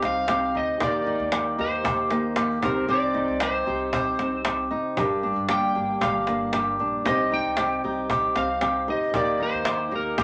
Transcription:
Already playing: C3 G3 C4 D#4 G4 C5
0.02 C2 C4 D#4 F5, cajon slap
0.28 C4 G4, cajon slap
0.54 D2 D#4 D#5
0.79 D#2 D#3 A#3 D#4 G4, cajon bass
0.83 A#4 D5
1.06 D#4
1.20 D#2
1.32 A#3 G4, cajon slap
1.58 D#2 D#4 G4 C5
1.84 D#2 A#3 G4, cajon bass
2.10 A#3 D#4, cajon slap
2.36 A#3 G4, cajon slap
2.61 C2 C3 C4 D#4 G4 A#4 C5, cajon bass
2.88 C2 C3 C4 G4 D5
3.14 D#4
3.28 C2
3.40 C4 G4 C5, cajon slap
3.67 C2 D#4 G4
3.93 C4 G4 C5, cajon bass
4.19 C2 C4 D#4, cajon slap
4.44 C4 G4, cajon slap
4.71 F1 D#4
4.96 G1 G2 G3 D4 G4 A#4, cajon bass
5.23 D4
5.36 G1
5.49 A#3 G4 G5, cajon slap
5.75 G1 D4 G4
6.01 G1 A#3 G4 F5, cajon bass
6.27 A#3 D4, cajon slap
6.53 A#3 G4, cajon slap
6.79 A#1 D4
7.04 C2 C3 C4 D#4 G4 D#5, cajon bass
7.08 C5
7.32 D#4 G5
7.44 C2
7.57 C4 G4, cajon slap
7.84 C2 D#4 G4
8.10 C4 G4, cajon bass
8.36 C2 C4 D#4 F5, cajon slap
8.61 C4 G4, cajon slap
8.87 D2 D#4 G4 C5 D#5
9.11 D#2 D#3 A#3 D#4 G4, cajon bass
9.15 A#4 D5
9.40 D#4 C5
9.53 D#2
9.65 A#3 G4, cajon slap
9.91 D#2 D#4 G4
9.96 A#4
10.18 D#2 A#3 G4, cajon bass

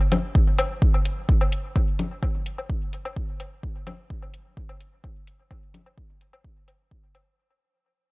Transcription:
0.12 closed hi-hat, low conga, low woodblock
0.35 kick
0.59 closed hi-hat, low woodblock
0.82 kick
0.94 low woodblock
1.05 closed hi-hat
1.29 kick
1.41 low woodblock
1.52 closed hi-hat
1.76 kick, low woodblock
1.99 closed hi-hat, low conga
2.23 kick, low woodblock
2.46 closed hi-hat
2.58 low woodblock
2.70 kick
2.93 closed hi-hat
3.05 low woodblock
3.16 kick
3.40 closed hi-hat, low woodblock
3.63 kick
3.87 closed hi-hat, low conga, low woodblock
4.10 kick
4.22 low woodblock
4.34 closed hi-hat
4.57 kick
4.69 low woodblock
4.80 closed hi-hat
5.04 kick, low woodblock
5.27 closed hi-hat
5.51 kick, low woodblock
5.74 closed hi-hat, low conga
5.86 low woodblock
5.98 kick
6.21 closed hi-hat
6.33 low woodblock
6.45 kick
6.68 closed hi-hat, low woodblock
6.91 kick
7.15 closed hi-hat, low woodblock

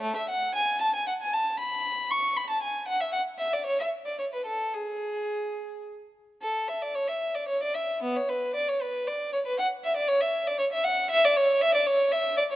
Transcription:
0.01 A3
0.16 E5
0.29 F#5
0.55 G#5
0.82 A5
0.95 G#5
1.07 F#5
1.22 G#5
1.33 A5
1.60 B5
2.11 C#6
2.37 B5
2.50 A5
2.63 G#5
2.88 F#5
3.01 E5
3.12 F#5
3.38 E5
3.53 D5
3.66 C#5
3.80 E5
4.06 D5
4.19 C#5
4.34 B4
4.46 A4
4.74 G#4
6.42 A4
6.68 E5
6.82 D5
6.95 C#5
7.08 E5
7.35 D5
7.48 C#5
7.63 D5
7.75 E5
8.03 B3
8.16 C#5
8.29 B4
8.55 D5
8.69 C#5
8.81 B4
9.08 D5
9.33 C#5
9.46 B4
9.58 F#5
9.84 E5
9.97 D5
10.08 C#5
10.21 E5
10.47 D5
10.59 C#5
10.73 E5
10.84 F#5
11.11 E5
11.25 D5
11.37 C#5
11.61 E5
11.75 D5
11.87 C#5
12.12 E5
12.38 D5
12.52 C#5

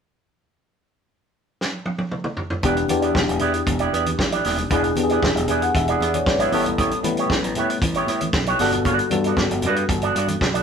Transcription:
1.61 snare
1.86 high tom
1.98 high tom
2.11 mid tom
2.24 mid tom
2.37 floor tom
2.50 floor tom
2.63 E1 E3 B3 D4 E4 G4 D5, kick, closed hi-hat, muted conga, low conga
2.77 muted clean electric guitar stroke, closed hi-hat
2.88 E2 E3 B3 D4 G4, muted clean electric guitar stroke, closed hi-hat, high conga
3.02 B3 E4 G4 D5, closed hi-hat
3.15 E1, muted clean electric guitar stroke, kick, snare
3.28 E1, muted clean electric guitar stroke, closed hi-hat
3.39 E2 B3 E4 G4 D5, closed hi-hat, low conga
3.54 muted clean electric guitar stroke, closed hi-hat
3.66 E1, muted clean electric guitar stroke, kick, closed hi-hat, high conga
3.79 B3 E4 G4 D5, closed hi-hat
3.93 E2 B3 E4 G4 D5, closed hi-hat
4.06 muted clean electric guitar stroke, closed hi-hat, high conga
4.18 A1, muted clean electric guitar stroke, kick, snare
4.32 B3 E4 G4 D5, closed hi-hat
4.44 D#1 B3 E4 G4 D5, snare, open hi-hat
4.57 muted clean electric guitar stroke, closed hi-hat, low conga
4.70 E1 E3 B3 D4 E4 G#4 D5, kick, closed hi-hat, low conga
4.83 muted clean electric guitar stroke, closed hi-hat
4.96 E2 E3 B3 D4 G4, muted clean electric guitar stroke, closed hi-hat, high conga
5.03 G#4
5.09 B3 E4 G#4 D5, closed hi-hat
5.22 E1, muted clean electric guitar stroke, kick, snare, muted conga
5.35 E1, muted clean electric guitar stroke, closed hi-hat
5.48 E2 B3 E4 G#4 D5 G#5, closed hi-hat, low conga
5.62 F#5, muted clean electric guitar stroke, closed hi-hat
5.75 E1 E5, muted clean electric guitar stroke, kick, closed hi-hat, muted conga, high conga
5.88 B3 E4 G#4 D5, closed hi-hat
6.00 E2 B3 E4 G#4 D5, closed hi-hat, muted conga
6.14 C#5 D5, muted clean electric guitar stroke, closed hi-hat, high conga
6.26 G#1 B4 C#5 D5, muted clean electric guitar stroke, kick, snare
6.39 B3 E4 G#4 C#5 D5 E5, closed hi-hat
6.52 A1 G3 B3 C#4 E4 G4 A4 C#5, open hi-hat, muted conga
6.66 muted clean electric guitar stroke, closed hi-hat, low conga
6.78 B3 E4 G4 C#5, kick, closed hi-hat, muted conga, low conga
6.91 muted clean electric guitar stroke, closed hi-hat
7.03 A2 G3 B3 C#4 B4, muted clean electric guitar stroke, closed hi-hat, muted conga, high conga
7.17 B3 E4 G4 C#5, closed hi-hat
7.30 A1, muted clean electric guitar stroke, kick, snare, muted conga
7.42 A1, muted clean electric guitar stroke, closed hi-hat
7.55 A2 B3 E4 G4 C#5, closed hi-hat, muted conga, low conga
7.70 muted clean electric guitar stroke, closed hi-hat
7.82 A1, muted clean electric guitar stroke, kick, closed hi-hat, high conga
7.94 B3 E4 G4 C#5, closed hi-hat
8.07 A2 B3 E4 G4 C#5, closed hi-hat, muted conga
8.21 muted clean electric guitar stroke, closed hi-hat, high conga
8.33 B1, muted clean electric guitar stroke, kick, snare
8.46 B3 E4 G4 C#5, closed hi-hat
8.59 G1 G3 B3 F#4 A4 D5, snare, open hi-hat, muted conga
8.72 muted clean electric guitar stroke, closed hi-hat, low conga
8.85 B3 F#4 A4 D5, kick, closed hi-hat, muted conga, low conga
8.99 muted clean electric guitar stroke, closed hi-hat
9.10 G2 G3 B3 F#4 A4, muted clean electric guitar stroke, closed hi-hat, high conga
9.24 B3 F#4 A4 D5, closed hi-hat
9.37 G1, muted clean electric guitar stroke, kick, snare, muted conga
9.51 G1, muted clean electric guitar stroke, closed hi-hat
9.62 G2 B3 F#4 A4, closed hi-hat, low conga
9.67 D5
9.76 muted clean electric guitar stroke, closed hi-hat
9.89 G1, muted clean electric guitar stroke, kick, closed hi-hat, high conga
10.02 B3 F#4 A4 D5, closed hi-hat
10.15 G2 B3 F#4 A4 D5, closed hi-hat
10.28 muted clean electric guitar stroke, closed hi-hat, high conga
10.41 B1, muted clean electric guitar stroke, kick, snare
10.54 B3 F#4 A4 D5, closed hi-hat

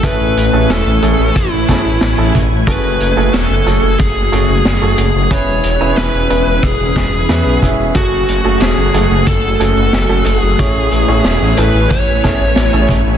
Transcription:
Already playing: A3
0.03 A1 A3 C#4 E4 G#4 A4 B4 C#5 G#5, kick, closed hi-hat
0.20 A1
0.37 A1, closed hi-hat
0.53 A1 A3 C#4 E4 G#4 A4
0.70 E1 A4, snare, closed hi-hat
0.86 A1
1.02 A1 A3 C#4 E4 G#4 A4, closed hi-hat
1.19 A1
1.36 A1 E4, kick, closed hi-hat
1.52 A1
1.68 A1 A3 C#4 E4 G#4 A4, kick, snare, closed hi-hat
1.85 A1
2.01 A1, snare, closed hi-hat
2.18 A1 A3 C#4 E4 G#4 A4
2.35 A1, kick, closed hi-hat
2.51 A1
2.67 F#1 A3 C#4 F#4 G#4 A4 B4, kick, closed hi-hat
2.84 F#1
3.00 F#1, closed hi-hat
3.17 F#1 A3 C#4 F#4 G#4 A4
3.33 E1 A4, snare, closed hi-hat
3.50 F#1
3.66 F#1 A3 C#4 F#4 G#4 A4, closed hi-hat
3.83 F#1
3.99 F#1 G#4, kick, closed hi-hat
4.16 F#1
4.32 F#1 A3 C#4 F#4 G#4 A4, closed hi-hat
4.49 F#1
4.65 F#1, snare, closed hi-hat
4.82 F#1 A3 C#4 F#4 G#4 A4
4.98 F#1 G#4, closed hi-hat
5.15 F#1
5.31 E1 B3 C#4 E4 G#4 B4 C#5, kick, closed hi-hat
5.48 E1
5.64 E1, closed hi-hat
5.81 E1 B3 C#4 E4 G#4 B4
5.97 E1 B4, snare, closed hi-hat
6.14 E1
6.30 E1 B3 C#4 E4 G#4 B4, closed hi-hat
6.47 E1
6.63 E1 G#4, kick, closed hi-hat
6.80 E1
6.96 E1, kick, snare, closed hi-hat
7.13 E1
7.29 E2 B3 C#4 E4 G#4 B4, snare, closed hi-hat
7.46 B1
7.62 E1 B3 C#4 E4 G#4 E5, kick, closed hi-hat
7.79 E1
7.95 F#1 A3 C#4 F#4 G#4 A4 G#5, kick, closed hi-hat
8.12 F#1
8.28 F#1, closed hi-hat
8.45 F#1 A3 C#4 F#4 G#4 A4
8.61 E1 G#4, snare, closed hi-hat
8.78 F#1
8.94 F#1 A3 C#4 F#4 G#4 A4, closed hi-hat
9.11 F#1
9.27 F#1 A4, kick, closed hi-hat
9.43 F#1
9.60 F#1 A3 C#4 F#4 G#4 A4, closed hi-hat
9.76 F#1
9.93 F#1, snare, closed hi-hat
10.09 F#1 A3 C#4 F#4 G#4 A4
10.26 F#1 A4, closed hi-hat
10.37 G#4
10.42 F#1
10.59 A1 A3 C#4 E4 G#4 B4 C#5 G#5, kick, closed hi-hat
10.75 A1
10.91 A1, closed hi-hat
11.08 A1 A3 C#4 E4 G#4 C#5
11.24 E1, snare, closed hi-hat
11.41 A1
11.57 A1 A3 C#4 E4 G#4 A4 B4, closed hi-hat
11.74 A1
11.90 A1 C#5, kick, closed hi-hat
12.07 A1
12.24 A1 A3 C#4 E4 G#4 A4, kick, snare, closed hi-hat
12.40 A1
12.56 A1, snare, closed hi-hat
12.73 A1 A3 C#4 E4 G#4 A4
12.89 A1, kick, closed hi-hat
13.06 A1

